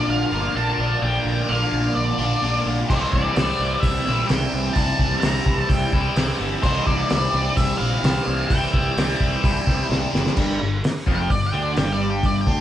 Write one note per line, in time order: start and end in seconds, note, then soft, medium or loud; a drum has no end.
0.00 0.54 A#2 medium
0.00 0.54 D3 medium
0.00 0.33 A#3 medium
0.00 0.32 D4 medium
0.00 0.30 F4 medium
0.08 0.24 A#1 medium
0.08 0.58 F5 medium
0.31 0.47 G1 medium
0.31 0.55 A#3 medium
0.31 0.56 D4 medium
0.31 0.56 F4 medium
0.55 0.71 A#1 medium
0.55 1.01 A#2 loud
0.55 1.02 D3 medium
0.55 0.80 A#3 loud
0.55 0.79 D4 loud
0.55 0.77 F4 loud
0.55 1.02 A5 loud
0.78 0.94 A#1 medium
0.78 1.02 A#3 medium
0.78 1.03 D4 medium
0.78 1.04 F4 medium
1.02 1.17 A#1 medium
1.02 1.49 A#2 medium
1.02 1.48 D3 medium
1.02 1.27 A#3 medium
1.02 1.26 D4 medium
1.02 1.25 F4 loud
1.02 1.51 G5 loud
1.25 1.41 A#1 medium
1.25 1.49 A#3 medium
1.25 1.50 D4 medium
1.25 1.51 F4 medium
1.49 1.64 A#1 medium
1.49 2.41 D3 medium
1.49 2.20 A#3 medium
1.49 2.19 D4 medium
1.49 2.17 F4 medium
1.49 1.95 F5 medium
1.72 1.88 A#1 medium
1.95 2.11 A#1 medium
1.95 2.62 D5 medium
2.19 2.34 A#1 medium
2.19 2.42 A#3 medium
2.19 2.43 D4 medium
2.19 2.43 F4 medium
2.42 2.58 A#1 medium
2.42 2.88 A#2 medium
2.42 2.88 D3 medium
2.42 2.67 A#3 medium
2.42 2.66 D4 loud
2.42 2.65 F4 medium
2.66 2.81 A#1 medium
2.66 2.89 A#3 medium
2.66 2.89 D4 medium
2.66 2.88 F4 medium
2.89 3.05 C2 medium
2.89 4.29 C3 medium
2.89 3.35 E3 medium
2.89 3.15 G3 loud
2.89 3.13 C4 medium
2.89 3.12 E4 loud
2.89 2.95 C5 medium
2.89 kick loud
2.89 crash medium
2.95 2.99 D5 medium
3.00 3.12 C5 medium
3.12 3.28 C2 medium
3.12 3.37 G3 medium
3.12 3.37 C4 medium
3.12 3.38 E4 medium
3.12 3.85 D5 medium
3.12 kick medium
3.36 3.52 C2 medium
3.36 4.29 E3 medium
3.36 4.08 G3 medium
3.36 4.07 C4 medium
3.36 4.05 E4 medium
3.36 snare loud
3.36 open hi-hat medium
3.60 3.75 C2 medium
3.80 3.98 C2 medium
3.80 4.27 E5 medium
3.80 kick loud
3.80 open hi-hat medium
4.06 4.22 A#1 medium
4.06 4.30 G3 medium
4.06 4.31 C4 medium
4.06 4.32 E4 medium
4.06 snare soft
4.28 4.45 C2 medium
4.28 4.75 C3 medium
4.28 4.76 E3 loud
4.28 4.55 G3 loud
4.28 4.54 C4 loud
4.28 4.77 G5 medium
4.28 snare loud
4.28 open hi-hat medium
4.32 4.52 E4 loud
4.53 4.68 C2 medium
4.53 4.76 G3 medium
4.53 4.77 C4 medium
4.53 4.78 E4 medium
4.73 4.91 C2 medium
4.73 6.17 C3 medium
4.73 5.23 E3 medium
4.73 5.02 G3 medium
4.73 5.21 A5 loud
4.73 kick loud
4.73 open hi-hat medium
4.77 5.01 C4 medium
4.77 4.99 E4 loud
4.99 5.14 C2 medium
4.99 5.24 G3 medium
4.99 5.24 C4 medium
4.99 5.25 E4 medium
4.99 kick medium
5.21 5.38 C2 medium
5.21 6.18 E3 medium
5.21 5.95 G3 medium
5.21 5.94 C4 medium
5.21 5.58 A#5 loud
5.21 snare loud
5.21 open hi-hat medium
5.26 5.92 E4 medium
5.46 5.61 C2 medium
5.46 kick medium
5.58 5.70 A5 loud
5.69 5.85 C2 medium
5.69 6.35 G5 medium
5.69 kick loud
5.69 open hi-hat medium
5.92 6.08 C2 medium
5.92 6.18 G3 medium
5.92 6.19 C4 medium
5.92 6.20 E4 medium
5.92 kick medium
5.92 snare soft
6.16 6.32 C2 medium
6.16 6.62 C3 medium
6.16 6.63 E3 medium
6.16 6.42 G3 loud
6.16 6.41 C4 loud
6.16 6.39 E4 loud
6.16 snare medium
6.16 open hi-hat medium
6.40 6.55 G1 medium
6.40 6.64 G3 medium
6.40 6.64 C4 medium
6.40 6.65 E4 medium
6.62 6.79 C2 loud
6.62 8.02 C3 medium
6.62 7.08 E3 loud
6.62 6.87 G3 loud
6.62 6.86 C4 loud
6.62 6.85 E4 loud
6.62 6.86 C5 medium
6.62 kick loud
6.62 crash medium
6.85 7.02 C2 medium
6.85 7.09 G3 medium
6.85 7.10 C4 medium
6.85 7.11 E4 medium
6.85 7.59 D5 medium
6.85 kick medium
7.09 7.26 C2 medium
7.09 8.03 E3 medium
7.09 7.82 G3 medium
7.09 7.80 C4 medium
7.09 7.78 E4 medium
7.09 snare loud
7.09 open hi-hat medium
7.34 7.49 C2 medium
7.57 7.72 C2 medium
7.57 7.77 E5 loud
7.57 kick medium
7.57 open hi-hat medium
7.78 7.95 A#1 medium
7.78 8.03 C4 medium
7.78 8.04 E4 medium
7.78 8.48 F5 medium
7.82 8.04 G3 medium
8.02 8.18 C2 medium
8.02 8.48 C3 medium
8.02 8.49 E3 medium
8.02 8.28 G3 loud
8.02 8.26 C4 loud
8.02 8.25 E4 loud
8.02 snare loud
8.02 open hi-hat medium
8.26 8.42 C2 medium
8.26 8.49 G3 medium
8.26 8.50 C4 medium
8.26 8.51 E4 medium
8.48 8.65 C2 medium
8.48 8.96 C3 medium
8.48 8.96 E3 medium
8.48 8.75 G3 medium
8.48 8.74 C4 medium
8.48 8.72 E4 loud
8.48 9.85 G5 medium
8.48 kick loud
8.48 open hi-hat medium
8.73 8.89 C2 medium
8.73 8.97 G3 medium
8.73 8.97 C4 medium
8.73 8.98 E4 medium
8.73 kick medium
8.97 9.12 C2 medium
8.97 9.88 E3 medium
8.97 9.67 G3 medium
8.97 9.66 C4 medium
8.97 9.65 E4 medium
8.97 snare loud
8.97 open hi-hat medium
9.21 9.36 C2 medium
9.21 kick medium
9.44 9.59 C2 medium
9.44 kick loud
9.44 open hi-hat medium
9.66 9.82 C2 medium
9.66 9.89 G3 medium
9.66 9.90 C4 medium
9.66 9.91 E4 medium
9.66 kick medium
9.66 snare soft
9.89 10.05 C2 medium
9.89 10.35 C3 loud
9.89 10.35 E3 medium
9.89 10.14 G3 loud
9.89 10.13 C4 medium
9.89 10.11 E4 medium
9.89 snare medium
10.13 10.29 F#1 medium
10.13 10.35 G3 medium
10.13 10.36 C4 medium
10.13 10.35 E4 medium
10.13 snare medium
10.26 snare medium
10.36 10.59 G1 medium
10.36 10.59 G2 medium
10.36 10.59 G3 medium
10.36 kick medium
10.36 crash loud
10.60 10.82 G1 medium
10.60 10.79 G2 medium
10.84 snare loud
10.84 open hi-hat medium
11.06 11.29 F1 medium
11.06 11.29 F2 medium
11.06 11.30 F3 medium
11.06 kick loud
11.15 11.30 G5 loud
11.30 11.52 G1 medium
11.30 11.49 G2 medium
11.30 11.45 D5 medium
11.30 kick medium
11.30 open hi-hat soft
11.47 11.61 G5 medium
11.53 11.75 D2 medium
11.53 11.76 D3 medium
11.53 11.76 D4 medium
11.63 11.77 D5 medium
11.76 12.43 G1 medium
11.76 12.46 G2 medium
11.76 12.46 G3 medium
11.76 11.92 G5 medium
11.76 snare loud
11.76 open hi-hat soft
11.92 12.08 D5 medium
12.10 12.24 G5 medium
12.23 12.40 D5 medium
12.23 kick medium
12.23 open hi-hat soft
12.41 12.61 G5 loud
12.46 12.61 D2 medium
12.46 12.61 D3 medium
12.46 12.61 D4 loud
12.46 kick medium